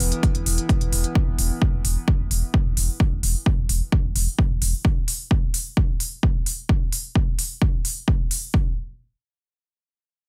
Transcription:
Already playing: E3 B3 G5
0.00 E1, open hi-hat
0.12 closed hi-hat
0.23 kick, closed hi-hat
0.35 E1, closed hi-hat
0.46 E1, open hi-hat
0.58 closed hi-hat
0.69 kick, closed hi-hat
0.81 E1, closed hi-hat
0.92 E1, open hi-hat
1.04 closed hi-hat
1.15 kick
1.27 E1
1.39 E1, open hi-hat
1.62 kick
1.73 E1
1.85 E1, open hi-hat
2.08 kick
2.19 E1
2.31 E1, open hi-hat
2.54 kick
2.66 E1
2.77 E1, open hi-hat
3.00 kick
3.12 E1
3.23 E1, open hi-hat
3.46 kick
3.58 E1
3.69 E1, open hi-hat
3.92 kick
4.04 E1
4.16 E1, open hi-hat
4.39 kick
4.50 E1
4.62 E1, open hi-hat
4.85 kick
5.08 open hi-hat
5.31 kick
5.54 open hi-hat
5.77 kick
6.00 open hi-hat
6.23 kick
6.46 open hi-hat
6.69 kick
6.92 open hi-hat
7.15 kick
7.39 open hi-hat
7.62 kick
7.85 open hi-hat
8.08 kick
8.31 open hi-hat
8.54 kick

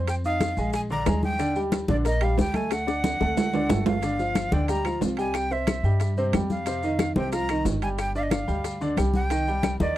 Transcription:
Already playing: F2 C4 C5 C6
0.08 G5, high bongo, high conga, high timbale, maracas
0.24 D#4 D#5 F5 D#6, high conga, maracas
0.41 high bongo, high conga, high timbale, maracas
0.57 A#1 G#3 G#4 G#5, high bongo, high conga, maracas
0.73 G#5, high bongo, high conga, high timbale, maracas
0.90 D3 D4 D5 A#5, high bongo, high conga, maracas
1.06 D#2 G#3 G#4 G#5, high bongo, low bongo, high conga, high timbale, low timbale, maracas
1.22 G5, high conga, maracas
1.39 D3 D4 D5, high bongo, high conga, high timbale, maracas
1.55 G3 G4 G5, high conga, maracas
1.72 high bongo, high conga, high timbale, maracas
1.88 A#1 D3 D4 D5, high bongo, high conga, maracas
2.04 A#3 A#4 D#5 A#5, high bongo, high conga, high timbale, maracas
2.21 G3 G4 F5 G5, high bongo, high conga, high timbale, maracas
2.38 D2 G5, high bongo, low bongo, high conga, low timbale, maracas
2.54 A3 A4 G#5 A5, high conga, high timbale, maracas
2.71 F#5, high bongo, high conga, high timbale, maracas
2.87 D4 D5 D6, high bongo, high conga, maracas
3.04 high conga, high timbale, maracas
3.20 D2 A3 A4 A5, high bongo, high conga, high timbale, maracas
3.37 low bongo, high conga, low timbale, maracas
3.53 D3 D4 D5, high conga, low timbale, maracas
3.69 G1 A3 A4 A5, low bongo, high conga, low timbale, maracas
3.86 F5, low bongo, high conga, low timbale, maracas
4.02 D3 D4 D5, high bongo, high conga, high timbale, maracas
4.19 F3 F4 F5, high conga, maracas
4.35 high bongo, high conga, high timbale, claves, maracas
4.51 D2 D3 D4 D5 G5, high bongo, high conga, maracas
4.68 G3 G4 G5 A#5, high bongo, high conga, high timbale, maracas
4.85 F3 F4 F5, high bongo, high conga, high timbale, claves, maracas
5.01 C2, high bongo, low bongo, high conga, low timbale, maracas
5.17 G3 G4 G5 G#5, high timbale, maracas
5.34 G5, high bongo, high conga, high timbale, claves, maracas
5.51 C4 C5 E5 C6, high conga, maracas
5.67 high bongo, high conga, high timbale, claves, maracas
5.83 G2 G3 G4 G5, high bongo, high conga, maracas
6.00 high bongo, high conga, high timbale, maracas
6.17 C3 C4 C5, high bongo, high conga, maracas
6.33 F2 G3 G4 G5, high bongo, low bongo, high conga, high timbale, low timbale, claves, maracas
6.50 F5, high conga, maracas
6.66 C3 C4 C5, high bongo, high conga, high timbale, maracas
6.83 D#3 D#4 D#5, high conga, maracas
6.99 high bongo, high conga, high timbale, claves, maracas
7.16 C2 C3 C4 C5 G5, high bongo, high conga, maracas
7.32 F3 F4 F5 A#5, high bongo, high conga, high timbale, maracas
7.49 D#3 D#4 D#5, high bongo, high conga, high timbale, claves, maracas
7.65 G1, high bongo, low bongo, high conga, low timbale, maracas
7.82 G3 G4 G5 G#5, high timbale, maracas
7.98 G5, high bongo, high conga, high timbale, claves, maracas
8.15 D4 D5 F5 D6, high conga, maracas
8.23 D#5
8.30 F5, high bongo, high conga, high timbale, claves, maracas
8.47 D2 G3 G4 G5, high bongo, high conga, maracas
8.64 high bongo, high conga, high timbale, maracas
8.81 D3 D4 D5, high bongo, high conga, maracas
8.97 C2 G3 G4 G5, high bongo, low bongo, high conga, high timbale, claves, maracas
9.14 G5, high conga, maracas
9.30 D#3 D#4 D#5, high bongo, high conga, high timbale, maracas
9.47 G3 G4 G5, high conga, maracas
9.63 high bongo, high conga, high timbale, claves, maracas
9.80 D#2 D#3 D#4 D5 D#5, high bongo, high conga, maracas

